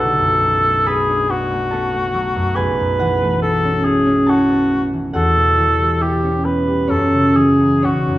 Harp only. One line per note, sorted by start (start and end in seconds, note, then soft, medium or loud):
0.00 2.56 B1 soft
0.00 0.41 F#3 soft
0.00 0.64 A3 soft
0.00 1.08 D4 soft
0.00 2.99 F#4 soft
0.00 2.98 F#5 medium
0.19 2.35 F#2 soft
0.42 2.13 F#3 soft
0.65 1.50 A3 soft
0.86 1.29 B3 soft
0.86 4.78 B4 soft
0.86 4.76 B5 medium
1.09 2.61 D4 soft
1.31 1.72 B3 soft
1.51 1.92 A3 soft
1.71 3.43 B3 soft
1.71 4.26 A4 medium
1.71 4.25 A5 medium
1.93 3.20 A3 soft
2.14 5.18 F#3 soft
2.36 2.61 F#2 soft
2.56 5.18 B1 soft
2.56 5.18 G#4 soft
2.56 3.29 G#5 medium
2.80 5.19 F#2 soft
2.99 4.92 E3 soft
2.99 5.13 F#4 medium
2.99 5.12 F#5 medium
3.21 4.70 A3 soft
3.44 4.48 B3 soft
3.65 4.05 C#4 soft
3.85 4.27 E4 soft
4.06 6.22 C#4 soft
4.26 6.00 E4 soft
4.26 5.18 A4 soft
4.26 5.18 A5 medium
4.50 6.01 B3 soft
4.71 5.18 A3 soft
4.93 5.18 E3 soft
5.13 6.93 E2 soft
5.13 8.18 F#4 soft
5.13 6.63 F#5 medium
5.36 6.93 B2 soft
5.57 6.93 E3 soft
5.79 6.66 G3 soft
6.00 6.44 B3 soft
6.00 7.87 E4 soft
6.00 7.86 E5 soft
6.23 6.87 C#4 soft
6.45 8.18 B3 soft
6.67 6.93 G3 soft
6.87 7.87 F#2 soft
6.87 7.82 C#4 soft
6.87 7.81 C#5 soft
7.12 7.87 C#3 soft
7.35 7.87 E3 soft
7.60 8.18 F#3 soft
7.82 8.18 B1 soft
7.82 8.18 C#4 soft
7.82 8.18 C#5 medium
8.08 8.18 F#2 soft